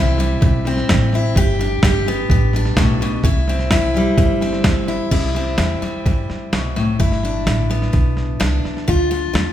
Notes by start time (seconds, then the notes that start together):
Already playing: C2 E3 G3 C4 E4
0.18 G3, snare
0.41 B1 G2, kick, snare
0.65 C4, snare
0.77 snare
0.89 A1 E3, kick, snare, hi-hat pedal
1.13 E4, snare
1.35 G1 G2 G4, kick, snare
1.59 D4, snare
1.83 G1 D3 G4, kick, snare, hi-hat pedal
2.06 B3, snare
2.29 A1 G2, kick, snare
2.53 D4, snare
2.65 snare
2.76 B1 A2, kick, snare, hi-hat pedal
3.01 B2, snare
3.23 C2 C3 E4, kick, snare
3.48 C4, snare
3.59 snare
3.71 E3 E4, kick, snare, hi-hat pedal
3.94 G3, snare
4.18 G1 G2, kick, snare
4.41 C4, snare
4.53 snare
4.64 E3, kick, snare, hi-hat pedal
4.88 E4, snare
5.11 C2 C3 E4, kick, snare, crash
5.35 C4, snare
5.58 E2 E3, snare, hi-hat pedal
5.82 G3, muted upright bass stroke, snare
6.05 G2, kick, snare
6.30 muted upright bass stroke, snare
6.53 C2 B2, snare, hi-hat pedal
6.76 A2, snare
7.00 G1 G2 E4, kick, snare
7.12 snare
7.23 D4, snare
7.46 A1 D3, snare, hi-hat pedal
7.70 B3, snare
7.82 snare
7.93 B1 G2, kick, snare
8.17 snare
8.40 C2 D3 D4, snare, hi-hat pedal
8.65 muted upright bass stroke, snare
8.77 snare
8.88 D2 D3 F4, kick, snare
9.11 F4, snare
9.33 E2 A3, snare, hi-hat pedal